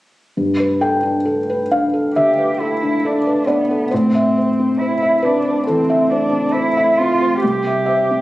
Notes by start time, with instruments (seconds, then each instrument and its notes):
0.37 felt piano G2
0.60 felt piano B4
0.81 felt piano A4 G5
1.03 felt piano D4
1.25 felt piano A4
1.50 felt piano B4
1.71 felt piano D4 F5
1.93 felt piano A4
2.15 felt piano D3 E5, cello G4
2.38 felt piano B4
2.60 cello E4, felt piano A4
2.82 felt piano D4
3.05 cello D4, felt piano A4
3.26 felt piano B4
3.47 cello B3, felt piano D4 D5
3.71 felt piano A4
3.91 felt piano A2 C5, cello C4
4.15 felt piano E5
4.38 felt piano C5
4.60 felt piano C4
4.79 cello E4, felt piano C5
5.02 felt piano E5
5.22 felt piano C4 B4, cello D4
5.45 felt piano C5
5.67 felt piano E3 A4, cello C4
5.90 felt piano E5
6.10 cello D4, felt piano C5
6.32 felt piano C4
6.53 cello E4, felt piano C5
6.77 felt piano E5
6.97 felt piano C4, cello F4
7.21 felt piano C5
7.41 felt piano C2, cello G4
7.67 felt piano E5
7.86 felt piano C5 E5
8.11 felt piano C4